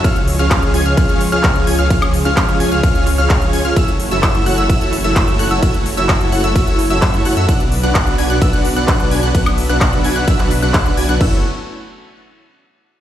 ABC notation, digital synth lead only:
X:1
M:4/4
L:1/16
Q:1/4=129
K:F#m
V:1 name="Digital synth lead"
^e' z2 e' z2 g' e' e' e' z e' e'2 g' e' | ^e' z2 e' e'2 g' e' e' e' z e' e'2 g' e' | e' z2 e' e'2 f' e' e' e' z e' e'2 f' e' | e' z2 e' e'2 f' e' e' e' z e' e'2 f' e' |
f' z2 f' f'2 g' f' e' f' z f' f'2 g' f' | f' z2 f' f'2 g' f' e' f' z f' f'2 g' f' | e'2 z12 z2 |]